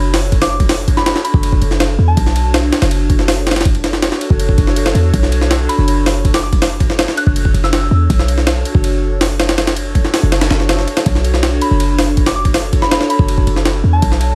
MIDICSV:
0, 0, Header, 1, 5, 480
1, 0, Start_track
1, 0, Key_signature, 2, "minor"
1, 0, Tempo, 370370
1, 897, Time_signature, 4, 2, 24, 8
1, 18598, End_track
2, 0, Start_track
2, 0, Title_t, "Synth bell"
2, 0, Program_c, 0, 98
2, 538, Note_on_c, 0, 86, 91
2, 614, Note_off_c, 0, 86, 0
2, 654, Note_on_c, 0, 86, 78
2, 733, Note_off_c, 0, 86, 0
2, 1257, Note_on_c, 0, 83, 92
2, 1333, Note_off_c, 0, 83, 0
2, 1374, Note_on_c, 0, 83, 78
2, 1453, Note_off_c, 0, 83, 0
2, 1612, Note_on_c, 0, 83, 97
2, 1903, Note_off_c, 0, 83, 0
2, 2693, Note_on_c, 0, 81, 92
2, 3175, Note_off_c, 0, 81, 0
2, 7374, Note_on_c, 0, 83, 98
2, 7664, Note_off_c, 0, 83, 0
2, 8219, Note_on_c, 0, 86, 88
2, 8294, Note_off_c, 0, 86, 0
2, 8338, Note_on_c, 0, 86, 76
2, 8414, Note_off_c, 0, 86, 0
2, 9297, Note_on_c, 0, 90, 96
2, 9374, Note_off_c, 0, 90, 0
2, 9418, Note_on_c, 0, 90, 75
2, 9494, Note_off_c, 0, 90, 0
2, 9900, Note_on_c, 0, 88, 91
2, 10570, Note_off_c, 0, 88, 0
2, 15057, Note_on_c, 0, 83, 94
2, 15345, Note_off_c, 0, 83, 0
2, 15896, Note_on_c, 0, 86, 89
2, 15973, Note_off_c, 0, 86, 0
2, 16014, Note_on_c, 0, 86, 75
2, 16093, Note_off_c, 0, 86, 0
2, 16615, Note_on_c, 0, 83, 96
2, 16693, Note_off_c, 0, 83, 0
2, 16740, Note_on_c, 0, 83, 79
2, 16816, Note_off_c, 0, 83, 0
2, 16975, Note_on_c, 0, 83, 98
2, 17264, Note_off_c, 0, 83, 0
2, 18053, Note_on_c, 0, 81, 93
2, 18535, Note_off_c, 0, 81, 0
2, 18598, End_track
3, 0, Start_track
3, 0, Title_t, "Ambient pad"
3, 0, Program_c, 1, 92
3, 0, Note_on_c, 1, 62, 116
3, 0, Note_on_c, 1, 66, 102
3, 0, Note_on_c, 1, 69, 98
3, 0, Note_on_c, 1, 73, 127
3, 387, Note_off_c, 1, 66, 0
3, 387, Note_off_c, 1, 69, 0
3, 387, Note_off_c, 1, 73, 0
3, 388, Note_off_c, 1, 62, 0
3, 894, Note_on_c, 1, 66, 100
3, 894, Note_on_c, 1, 73, 127
3, 895, Note_on_c, 1, 69, 105
3, 896, Note_on_c, 1, 62, 111
3, 2306, Note_off_c, 1, 73, 0
3, 2307, Note_off_c, 1, 62, 0
3, 2307, Note_off_c, 1, 66, 0
3, 2307, Note_off_c, 1, 69, 0
3, 2815, Note_on_c, 1, 66, 101
3, 2816, Note_on_c, 1, 62, 114
3, 2816, Note_on_c, 1, 69, 103
3, 2816, Note_on_c, 1, 73, 127
3, 4227, Note_off_c, 1, 66, 0
3, 4227, Note_off_c, 1, 69, 0
3, 4228, Note_off_c, 1, 62, 0
3, 4228, Note_off_c, 1, 73, 0
3, 4734, Note_on_c, 1, 62, 112
3, 4736, Note_on_c, 1, 66, 105
3, 4736, Note_on_c, 1, 69, 103
3, 4737, Note_on_c, 1, 73, 126
3, 6147, Note_off_c, 1, 62, 0
3, 6147, Note_off_c, 1, 66, 0
3, 6148, Note_off_c, 1, 69, 0
3, 6148, Note_off_c, 1, 73, 0
3, 6653, Note_on_c, 1, 62, 114
3, 6653, Note_on_c, 1, 66, 105
3, 6653, Note_on_c, 1, 69, 103
3, 6653, Note_on_c, 1, 73, 127
3, 8066, Note_off_c, 1, 62, 0
3, 8066, Note_off_c, 1, 66, 0
3, 8066, Note_off_c, 1, 69, 0
3, 8066, Note_off_c, 1, 73, 0
3, 8576, Note_on_c, 1, 69, 105
3, 8576, Note_on_c, 1, 73, 125
3, 8577, Note_on_c, 1, 62, 112
3, 8577, Note_on_c, 1, 66, 107
3, 9988, Note_off_c, 1, 62, 0
3, 9988, Note_off_c, 1, 66, 0
3, 9988, Note_off_c, 1, 69, 0
3, 9988, Note_off_c, 1, 73, 0
3, 10495, Note_on_c, 1, 62, 111
3, 10496, Note_on_c, 1, 73, 126
3, 10497, Note_on_c, 1, 66, 105
3, 10497, Note_on_c, 1, 69, 104
3, 11907, Note_off_c, 1, 62, 0
3, 11907, Note_off_c, 1, 73, 0
3, 11908, Note_off_c, 1, 66, 0
3, 11908, Note_off_c, 1, 69, 0
3, 12415, Note_on_c, 1, 62, 120
3, 12415, Note_on_c, 1, 73, 127
3, 12416, Note_on_c, 1, 66, 106
3, 12419, Note_on_c, 1, 69, 108
3, 13827, Note_off_c, 1, 62, 0
3, 13827, Note_off_c, 1, 66, 0
3, 13827, Note_off_c, 1, 73, 0
3, 13829, Note_off_c, 1, 69, 0
3, 14332, Note_on_c, 1, 73, 125
3, 14333, Note_on_c, 1, 69, 104
3, 14335, Note_on_c, 1, 62, 115
3, 14335, Note_on_c, 1, 66, 104
3, 15746, Note_off_c, 1, 69, 0
3, 15746, Note_off_c, 1, 73, 0
3, 15747, Note_off_c, 1, 62, 0
3, 15747, Note_off_c, 1, 66, 0
3, 16251, Note_on_c, 1, 73, 127
3, 16252, Note_on_c, 1, 66, 107
3, 16252, Note_on_c, 1, 69, 103
3, 16253, Note_on_c, 1, 62, 117
3, 17665, Note_off_c, 1, 66, 0
3, 17665, Note_off_c, 1, 73, 0
3, 17666, Note_off_c, 1, 62, 0
3, 17666, Note_off_c, 1, 69, 0
3, 18171, Note_on_c, 1, 66, 104
3, 18171, Note_on_c, 1, 69, 106
3, 18172, Note_on_c, 1, 62, 109
3, 18172, Note_on_c, 1, 73, 127
3, 18598, Note_off_c, 1, 62, 0
3, 18598, Note_off_c, 1, 66, 0
3, 18598, Note_off_c, 1, 69, 0
3, 18598, Note_off_c, 1, 73, 0
3, 18598, End_track
4, 0, Start_track
4, 0, Title_t, "808-style bass"
4, 0, Program_c, 2, 38
4, 0, Note_on_c, 2, 30, 101
4, 1478, Note_off_c, 2, 30, 0
4, 1736, Note_on_c, 2, 30, 94
4, 2076, Note_off_c, 2, 30, 0
4, 2095, Note_on_c, 2, 30, 80
4, 2557, Note_off_c, 2, 30, 0
4, 2574, Note_on_c, 2, 40, 85
4, 2791, Note_off_c, 2, 40, 0
4, 2815, Note_on_c, 2, 35, 97
4, 3517, Note_off_c, 2, 35, 0
4, 3654, Note_on_c, 2, 30, 99
4, 5316, Note_off_c, 2, 30, 0
4, 5577, Note_on_c, 2, 30, 95
4, 5917, Note_off_c, 2, 30, 0
4, 5936, Note_on_c, 2, 30, 78
4, 6397, Note_off_c, 2, 30, 0
4, 6412, Note_on_c, 2, 40, 84
4, 6630, Note_off_c, 2, 40, 0
4, 6656, Note_on_c, 2, 35, 99
4, 7357, Note_off_c, 2, 35, 0
4, 7496, Note_on_c, 2, 30, 94
4, 9157, Note_off_c, 2, 30, 0
4, 9417, Note_on_c, 2, 30, 93
4, 9757, Note_off_c, 2, 30, 0
4, 9774, Note_on_c, 2, 30, 83
4, 10236, Note_off_c, 2, 30, 0
4, 10253, Note_on_c, 2, 40, 83
4, 10471, Note_off_c, 2, 40, 0
4, 10497, Note_on_c, 2, 35, 96
4, 11197, Note_off_c, 2, 35, 0
4, 11337, Note_on_c, 2, 30, 95
4, 12998, Note_off_c, 2, 30, 0
4, 13260, Note_on_c, 2, 30, 99
4, 13599, Note_off_c, 2, 30, 0
4, 13617, Note_on_c, 2, 30, 81
4, 14078, Note_off_c, 2, 30, 0
4, 14336, Note_on_c, 2, 35, 96
4, 15037, Note_off_c, 2, 35, 0
4, 15177, Note_on_c, 2, 30, 97
4, 16838, Note_off_c, 2, 30, 0
4, 17097, Note_on_c, 2, 30, 100
4, 17437, Note_off_c, 2, 30, 0
4, 17456, Note_on_c, 2, 30, 82
4, 17917, Note_off_c, 2, 30, 0
4, 17934, Note_on_c, 2, 40, 81
4, 18151, Note_off_c, 2, 40, 0
4, 18175, Note_on_c, 2, 35, 97
4, 18598, Note_off_c, 2, 35, 0
4, 18598, End_track
5, 0, Start_track
5, 0, Title_t, "Drums"
5, 178, Note_on_c, 9, 38, 106
5, 178, Note_on_c, 9, 46, 74
5, 307, Note_off_c, 9, 38, 0
5, 307, Note_off_c, 9, 46, 0
5, 416, Note_on_c, 9, 36, 93
5, 417, Note_on_c, 9, 51, 65
5, 540, Note_on_c, 9, 38, 106
5, 540, Note_on_c, 9, 46, 70
5, 546, Note_off_c, 9, 36, 0
5, 546, Note_off_c, 9, 51, 0
5, 669, Note_off_c, 9, 38, 0
5, 669, Note_off_c, 9, 46, 0
5, 777, Note_on_c, 9, 36, 83
5, 778, Note_on_c, 9, 51, 59
5, 897, Note_on_c, 9, 38, 102
5, 897, Note_on_c, 9, 46, 74
5, 907, Note_off_c, 9, 36, 0
5, 907, Note_off_c, 9, 51, 0
5, 1027, Note_off_c, 9, 38, 0
5, 1027, Note_off_c, 9, 46, 0
5, 1136, Note_on_c, 9, 36, 90
5, 1138, Note_on_c, 9, 51, 67
5, 1260, Note_on_c, 9, 38, 56
5, 1266, Note_off_c, 9, 36, 0
5, 1267, Note_off_c, 9, 51, 0
5, 1377, Note_off_c, 9, 38, 0
5, 1377, Note_on_c, 9, 38, 109
5, 1377, Note_on_c, 9, 51, 86
5, 1498, Note_off_c, 9, 38, 0
5, 1498, Note_on_c, 9, 38, 61
5, 1506, Note_off_c, 9, 51, 0
5, 1616, Note_on_c, 9, 51, 69
5, 1628, Note_off_c, 9, 38, 0
5, 1735, Note_on_c, 9, 36, 95
5, 1746, Note_off_c, 9, 51, 0
5, 1855, Note_on_c, 9, 51, 89
5, 1865, Note_off_c, 9, 36, 0
5, 1976, Note_on_c, 9, 36, 106
5, 1985, Note_off_c, 9, 51, 0
5, 2094, Note_on_c, 9, 51, 65
5, 2105, Note_off_c, 9, 36, 0
5, 2216, Note_on_c, 9, 38, 40
5, 2224, Note_off_c, 9, 51, 0
5, 2335, Note_off_c, 9, 38, 0
5, 2335, Note_on_c, 9, 38, 111
5, 2335, Note_on_c, 9, 51, 87
5, 2465, Note_off_c, 9, 38, 0
5, 2465, Note_off_c, 9, 51, 0
5, 2814, Note_on_c, 9, 51, 83
5, 2815, Note_on_c, 9, 36, 107
5, 2935, Note_on_c, 9, 38, 39
5, 2944, Note_off_c, 9, 36, 0
5, 2944, Note_off_c, 9, 51, 0
5, 3055, Note_on_c, 9, 51, 71
5, 3065, Note_off_c, 9, 38, 0
5, 3184, Note_off_c, 9, 51, 0
5, 3294, Note_on_c, 9, 38, 114
5, 3294, Note_on_c, 9, 51, 86
5, 3423, Note_off_c, 9, 38, 0
5, 3423, Note_off_c, 9, 51, 0
5, 3532, Note_on_c, 9, 38, 105
5, 3532, Note_on_c, 9, 51, 78
5, 3654, Note_off_c, 9, 38, 0
5, 3654, Note_off_c, 9, 51, 0
5, 3654, Note_on_c, 9, 38, 104
5, 3654, Note_on_c, 9, 51, 84
5, 3772, Note_off_c, 9, 51, 0
5, 3772, Note_on_c, 9, 51, 89
5, 3783, Note_off_c, 9, 38, 0
5, 3902, Note_off_c, 9, 51, 0
5, 4014, Note_on_c, 9, 36, 103
5, 4014, Note_on_c, 9, 51, 69
5, 4134, Note_on_c, 9, 38, 52
5, 4143, Note_off_c, 9, 51, 0
5, 4144, Note_off_c, 9, 36, 0
5, 4253, Note_off_c, 9, 38, 0
5, 4253, Note_on_c, 9, 38, 127
5, 4253, Note_on_c, 9, 46, 86
5, 4383, Note_off_c, 9, 38, 0
5, 4383, Note_off_c, 9, 46, 0
5, 4493, Note_on_c, 9, 38, 87
5, 4493, Note_on_c, 9, 51, 68
5, 4553, Note_off_c, 9, 38, 0
5, 4553, Note_off_c, 9, 51, 0
5, 4553, Note_on_c, 9, 38, 96
5, 4553, Note_on_c, 9, 51, 72
5, 4616, Note_off_c, 9, 38, 0
5, 4616, Note_off_c, 9, 51, 0
5, 4616, Note_on_c, 9, 38, 86
5, 4616, Note_on_c, 9, 51, 66
5, 4674, Note_off_c, 9, 38, 0
5, 4674, Note_off_c, 9, 51, 0
5, 4674, Note_on_c, 9, 38, 81
5, 4674, Note_on_c, 9, 51, 64
5, 4735, Note_off_c, 9, 51, 0
5, 4735, Note_on_c, 9, 36, 107
5, 4735, Note_on_c, 9, 51, 84
5, 4803, Note_off_c, 9, 38, 0
5, 4857, Note_off_c, 9, 51, 0
5, 4857, Note_on_c, 9, 51, 45
5, 4865, Note_off_c, 9, 36, 0
5, 4975, Note_off_c, 9, 51, 0
5, 4975, Note_on_c, 9, 38, 59
5, 4975, Note_on_c, 9, 51, 70
5, 5096, Note_off_c, 9, 38, 0
5, 5096, Note_on_c, 9, 38, 56
5, 5105, Note_off_c, 9, 51, 0
5, 5215, Note_off_c, 9, 38, 0
5, 5215, Note_on_c, 9, 38, 115
5, 5215, Note_on_c, 9, 51, 85
5, 5338, Note_off_c, 9, 38, 0
5, 5338, Note_on_c, 9, 38, 57
5, 5345, Note_off_c, 9, 51, 0
5, 5458, Note_on_c, 9, 51, 73
5, 5468, Note_off_c, 9, 38, 0
5, 5577, Note_on_c, 9, 36, 98
5, 5587, Note_off_c, 9, 51, 0
5, 5696, Note_on_c, 9, 51, 90
5, 5706, Note_off_c, 9, 36, 0
5, 5817, Note_on_c, 9, 36, 105
5, 5826, Note_off_c, 9, 51, 0
5, 5934, Note_on_c, 9, 51, 72
5, 5935, Note_off_c, 9, 36, 0
5, 5935, Note_on_c, 9, 36, 95
5, 6057, Note_on_c, 9, 38, 49
5, 6064, Note_off_c, 9, 51, 0
5, 6065, Note_off_c, 9, 36, 0
5, 6174, Note_on_c, 9, 51, 96
5, 6187, Note_off_c, 9, 38, 0
5, 6296, Note_on_c, 9, 38, 120
5, 6304, Note_off_c, 9, 51, 0
5, 6416, Note_on_c, 9, 51, 71
5, 6426, Note_off_c, 9, 38, 0
5, 6546, Note_off_c, 9, 51, 0
5, 6656, Note_on_c, 9, 36, 102
5, 6657, Note_on_c, 9, 51, 86
5, 6779, Note_on_c, 9, 38, 39
5, 6786, Note_off_c, 9, 36, 0
5, 6786, Note_off_c, 9, 51, 0
5, 6896, Note_on_c, 9, 51, 72
5, 6909, Note_off_c, 9, 38, 0
5, 7016, Note_on_c, 9, 38, 41
5, 7026, Note_off_c, 9, 51, 0
5, 7137, Note_off_c, 9, 38, 0
5, 7137, Note_on_c, 9, 38, 115
5, 7137, Note_on_c, 9, 51, 85
5, 7267, Note_off_c, 9, 38, 0
5, 7267, Note_off_c, 9, 51, 0
5, 7378, Note_on_c, 9, 51, 81
5, 7508, Note_off_c, 9, 51, 0
5, 7618, Note_on_c, 9, 51, 84
5, 7748, Note_off_c, 9, 51, 0
5, 7858, Note_on_c, 9, 38, 105
5, 7858, Note_on_c, 9, 46, 79
5, 7987, Note_off_c, 9, 38, 0
5, 7987, Note_off_c, 9, 46, 0
5, 8097, Note_on_c, 9, 36, 92
5, 8098, Note_on_c, 9, 51, 66
5, 8218, Note_on_c, 9, 38, 111
5, 8218, Note_on_c, 9, 46, 73
5, 8226, Note_off_c, 9, 36, 0
5, 8228, Note_off_c, 9, 51, 0
5, 8348, Note_off_c, 9, 38, 0
5, 8348, Note_off_c, 9, 46, 0
5, 8458, Note_on_c, 9, 36, 83
5, 8458, Note_on_c, 9, 51, 62
5, 8578, Note_on_c, 9, 38, 105
5, 8578, Note_on_c, 9, 46, 67
5, 8587, Note_off_c, 9, 36, 0
5, 8587, Note_off_c, 9, 51, 0
5, 8708, Note_off_c, 9, 38, 0
5, 8708, Note_off_c, 9, 46, 0
5, 8817, Note_on_c, 9, 36, 85
5, 8818, Note_on_c, 9, 51, 61
5, 8940, Note_on_c, 9, 38, 55
5, 8947, Note_off_c, 9, 36, 0
5, 8948, Note_off_c, 9, 51, 0
5, 9057, Note_off_c, 9, 38, 0
5, 9057, Note_on_c, 9, 38, 117
5, 9057, Note_on_c, 9, 51, 88
5, 9179, Note_off_c, 9, 38, 0
5, 9179, Note_on_c, 9, 38, 59
5, 9187, Note_off_c, 9, 51, 0
5, 9298, Note_on_c, 9, 51, 69
5, 9309, Note_off_c, 9, 38, 0
5, 9417, Note_on_c, 9, 36, 98
5, 9428, Note_off_c, 9, 51, 0
5, 9538, Note_on_c, 9, 51, 92
5, 9547, Note_off_c, 9, 36, 0
5, 9657, Note_on_c, 9, 36, 101
5, 9668, Note_off_c, 9, 51, 0
5, 9778, Note_on_c, 9, 51, 65
5, 9787, Note_off_c, 9, 36, 0
5, 9899, Note_on_c, 9, 38, 40
5, 9908, Note_off_c, 9, 51, 0
5, 10016, Note_off_c, 9, 38, 0
5, 10016, Note_on_c, 9, 38, 112
5, 10016, Note_on_c, 9, 51, 86
5, 10146, Note_off_c, 9, 38, 0
5, 10146, Note_off_c, 9, 51, 0
5, 10497, Note_on_c, 9, 36, 107
5, 10498, Note_on_c, 9, 51, 85
5, 10619, Note_on_c, 9, 38, 39
5, 10626, Note_off_c, 9, 36, 0
5, 10628, Note_off_c, 9, 51, 0
5, 10736, Note_on_c, 9, 51, 72
5, 10748, Note_off_c, 9, 38, 0
5, 10856, Note_on_c, 9, 38, 43
5, 10865, Note_off_c, 9, 51, 0
5, 10975, Note_off_c, 9, 38, 0
5, 10975, Note_on_c, 9, 38, 115
5, 10975, Note_on_c, 9, 51, 90
5, 11105, Note_off_c, 9, 38, 0
5, 11105, Note_off_c, 9, 51, 0
5, 11216, Note_on_c, 9, 51, 68
5, 11337, Note_on_c, 9, 36, 99
5, 11345, Note_off_c, 9, 51, 0
5, 11455, Note_on_c, 9, 51, 89
5, 11466, Note_off_c, 9, 36, 0
5, 11584, Note_off_c, 9, 51, 0
5, 11936, Note_on_c, 9, 38, 118
5, 11936, Note_on_c, 9, 46, 88
5, 12065, Note_off_c, 9, 38, 0
5, 12065, Note_off_c, 9, 46, 0
5, 12177, Note_on_c, 9, 38, 106
5, 12177, Note_on_c, 9, 51, 79
5, 12298, Note_off_c, 9, 38, 0
5, 12298, Note_off_c, 9, 51, 0
5, 12298, Note_on_c, 9, 38, 102
5, 12298, Note_on_c, 9, 51, 73
5, 12415, Note_off_c, 9, 38, 0
5, 12415, Note_off_c, 9, 51, 0
5, 12415, Note_on_c, 9, 38, 101
5, 12415, Note_on_c, 9, 51, 80
5, 12537, Note_off_c, 9, 38, 0
5, 12537, Note_off_c, 9, 51, 0
5, 12537, Note_on_c, 9, 38, 100
5, 12537, Note_on_c, 9, 51, 77
5, 12655, Note_off_c, 9, 51, 0
5, 12655, Note_on_c, 9, 51, 84
5, 12666, Note_off_c, 9, 38, 0
5, 12785, Note_off_c, 9, 51, 0
5, 12897, Note_on_c, 9, 36, 82
5, 12897, Note_on_c, 9, 51, 60
5, 13019, Note_on_c, 9, 38, 47
5, 13026, Note_off_c, 9, 36, 0
5, 13026, Note_off_c, 9, 51, 0
5, 13137, Note_off_c, 9, 38, 0
5, 13137, Note_on_c, 9, 38, 107
5, 13137, Note_on_c, 9, 46, 73
5, 13267, Note_off_c, 9, 38, 0
5, 13267, Note_off_c, 9, 46, 0
5, 13376, Note_on_c, 9, 38, 107
5, 13376, Note_on_c, 9, 51, 82
5, 13496, Note_off_c, 9, 38, 0
5, 13496, Note_off_c, 9, 51, 0
5, 13496, Note_on_c, 9, 38, 112
5, 13496, Note_on_c, 9, 51, 85
5, 13615, Note_off_c, 9, 38, 0
5, 13615, Note_off_c, 9, 51, 0
5, 13615, Note_on_c, 9, 38, 112
5, 13615, Note_on_c, 9, 51, 82
5, 13737, Note_off_c, 9, 38, 0
5, 13737, Note_on_c, 9, 38, 49
5, 13745, Note_off_c, 9, 51, 0
5, 13856, Note_off_c, 9, 38, 0
5, 13856, Note_on_c, 9, 38, 116
5, 13856, Note_on_c, 9, 51, 84
5, 13979, Note_off_c, 9, 38, 0
5, 13979, Note_on_c, 9, 38, 51
5, 13985, Note_off_c, 9, 51, 0
5, 14095, Note_on_c, 9, 51, 62
5, 14109, Note_off_c, 9, 38, 0
5, 14215, Note_off_c, 9, 51, 0
5, 14215, Note_on_c, 9, 38, 99
5, 14215, Note_on_c, 9, 51, 80
5, 14334, Note_off_c, 9, 51, 0
5, 14334, Note_on_c, 9, 51, 84
5, 14335, Note_on_c, 9, 36, 108
5, 14344, Note_off_c, 9, 38, 0
5, 14455, Note_on_c, 9, 38, 38
5, 14463, Note_off_c, 9, 51, 0
5, 14465, Note_off_c, 9, 36, 0
5, 14574, Note_on_c, 9, 51, 71
5, 14584, Note_off_c, 9, 38, 0
5, 14693, Note_on_c, 9, 38, 42
5, 14703, Note_off_c, 9, 51, 0
5, 14812, Note_off_c, 9, 38, 0
5, 14812, Note_on_c, 9, 38, 118
5, 14812, Note_on_c, 9, 51, 86
5, 14942, Note_off_c, 9, 38, 0
5, 14942, Note_off_c, 9, 51, 0
5, 15053, Note_on_c, 9, 51, 80
5, 15182, Note_off_c, 9, 51, 0
5, 15293, Note_on_c, 9, 51, 89
5, 15422, Note_off_c, 9, 51, 0
5, 15533, Note_on_c, 9, 38, 108
5, 15533, Note_on_c, 9, 46, 78
5, 15663, Note_off_c, 9, 38, 0
5, 15663, Note_off_c, 9, 46, 0
5, 15774, Note_on_c, 9, 51, 64
5, 15775, Note_on_c, 9, 36, 92
5, 15894, Note_on_c, 9, 38, 107
5, 15894, Note_on_c, 9, 46, 73
5, 15903, Note_off_c, 9, 51, 0
5, 15905, Note_off_c, 9, 36, 0
5, 16024, Note_off_c, 9, 38, 0
5, 16024, Note_off_c, 9, 46, 0
5, 16136, Note_on_c, 9, 51, 58
5, 16137, Note_on_c, 9, 36, 85
5, 16255, Note_on_c, 9, 38, 106
5, 16255, Note_on_c, 9, 46, 74
5, 16266, Note_off_c, 9, 36, 0
5, 16266, Note_off_c, 9, 51, 0
5, 16385, Note_off_c, 9, 38, 0
5, 16385, Note_off_c, 9, 46, 0
5, 16495, Note_on_c, 9, 36, 90
5, 16496, Note_on_c, 9, 51, 63
5, 16617, Note_on_c, 9, 38, 57
5, 16625, Note_off_c, 9, 36, 0
5, 16625, Note_off_c, 9, 51, 0
5, 16737, Note_off_c, 9, 38, 0
5, 16737, Note_on_c, 9, 38, 114
5, 16737, Note_on_c, 9, 51, 82
5, 16857, Note_off_c, 9, 38, 0
5, 16857, Note_on_c, 9, 38, 60
5, 16867, Note_off_c, 9, 51, 0
5, 16977, Note_on_c, 9, 51, 70
5, 16987, Note_off_c, 9, 38, 0
5, 17097, Note_on_c, 9, 36, 99
5, 17107, Note_off_c, 9, 51, 0
5, 17217, Note_on_c, 9, 51, 88
5, 17226, Note_off_c, 9, 36, 0
5, 17337, Note_on_c, 9, 36, 101
5, 17346, Note_off_c, 9, 51, 0
5, 17458, Note_on_c, 9, 51, 63
5, 17466, Note_off_c, 9, 36, 0
5, 17578, Note_on_c, 9, 38, 39
5, 17587, Note_off_c, 9, 51, 0
5, 17696, Note_off_c, 9, 38, 0
5, 17696, Note_on_c, 9, 38, 108
5, 17696, Note_on_c, 9, 51, 81
5, 17826, Note_off_c, 9, 38, 0
5, 17826, Note_off_c, 9, 51, 0
5, 18174, Note_on_c, 9, 51, 88
5, 18175, Note_on_c, 9, 36, 106
5, 18296, Note_on_c, 9, 38, 39
5, 18304, Note_off_c, 9, 36, 0
5, 18304, Note_off_c, 9, 51, 0
5, 18413, Note_on_c, 9, 51, 74
5, 18425, Note_off_c, 9, 38, 0
5, 18542, Note_off_c, 9, 51, 0
5, 18598, End_track
0, 0, End_of_file